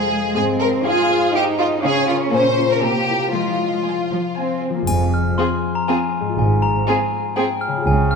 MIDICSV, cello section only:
0, 0, Header, 1, 2, 480
1, 0, Start_track
1, 0, Key_signature, -4, "minor"
1, 0, Tempo, 493421
1, 341, Time_signature, 3, 2, 24, 8
1, 2737, Tempo, 512821
1, 5137, Tempo, 495050
1, 7829, End_track
2, 0, Start_track
2, 0, Title_t, "Cello section"
2, 0, Program_c, 0, 48
2, 0, Note_on_c, 0, 56, 41
2, 341, Note_off_c, 0, 56, 0
2, 346, Note_on_c, 0, 60, 50
2, 822, Note_off_c, 0, 60, 0
2, 823, Note_on_c, 0, 65, 51
2, 1288, Note_on_c, 0, 63, 54
2, 1296, Note_off_c, 0, 65, 0
2, 1772, Note_off_c, 0, 63, 0
2, 1772, Note_on_c, 0, 61, 57
2, 2735, Note_off_c, 0, 61, 0
2, 2743, Note_on_c, 0, 58, 41
2, 3210, Note_off_c, 0, 58, 0
2, 3220, Note_on_c, 0, 56, 36
2, 3654, Note_off_c, 0, 56, 0
2, 3703, Note_on_c, 0, 56, 37
2, 3778, Note_off_c, 0, 56, 0
2, 3947, Note_on_c, 0, 53, 37
2, 4022, Note_off_c, 0, 53, 0
2, 4196, Note_on_c, 0, 60, 36
2, 4544, Note_off_c, 0, 60, 0
2, 4549, Note_on_c, 0, 58, 32
2, 4596, Note_off_c, 0, 58, 0
2, 4674, Note_on_c, 0, 41, 52
2, 5063, Note_off_c, 0, 41, 0
2, 6106, Note_on_c, 0, 44, 57
2, 6508, Note_off_c, 0, 44, 0
2, 7538, Note_on_c, 0, 49, 57
2, 7829, Note_off_c, 0, 49, 0
2, 7829, End_track
0, 0, End_of_file